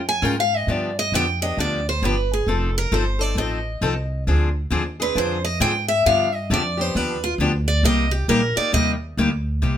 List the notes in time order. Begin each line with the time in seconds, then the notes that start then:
Already playing: F2
0.09 G#5
0.22 G#2 G#3 C#4 F4 A#4 G5
0.40 F5
0.57 D#5
0.67 G2 D3 F3 B3 D4 G4
0.72 D5
0.99 D#5
1.12 F2 D3 F3 B3 D4 G4 G5
1.42 B3 D4 G4 D#5
1.57 D2 D3 F3 B3 D4 G4 D5
1.89 C5
2.02 G1 D3 F3 B3 D4 G4 B4
2.33 G#4
2.47 F1 F3 C4 D#4 A4
2.78 A#4
2.92 G1 F3 C4 D#4 A4 C5
3.19 C4 D#4 A4 D5
3.35 A1 F3 C4 D#4 A4 D#5
3.81 C2 F3 C4 D#4 A4
4.27 D2 D3 F3 C4 D4 G#4
4.70 D#2 D3 F3 C4 D4 G#4
5.00 C4 D4 G#4 B4
5.15 F2 D3 F3 C4 D4 G#4 C5
5.45 D#5
5.60 G#2 D3 F3 C4 D4 G#4 G5
5.88 E5
6.06 G2 D3 F3 B3 D4 G4 F5
6.35 D#5
6.50 F2 D3 F3 B3 D4 G4 D5
6.77 B3 D4 G4 C5
6.95 D#2 D3 F3 B3 D4 G4 B4
7.24 F4
7.38 D2 D3 F3 B3 D4 G4
7.68 D5
7.83 C2 C3 G3 A#3 D#4 G4 D#5
8.11 G4
8.28 A#1 C3 G3 A#3 D#4 G4 A#4
8.56 A#3 D#4 G4 D5, muted upright bass stroke
8.72 D#2 C3 G3 A#3 D#4 G4 D#5
9.17 D2 C3 G3 A#3 D#4 G4
9.62 C2 C3 G3 A#3 D#4 G4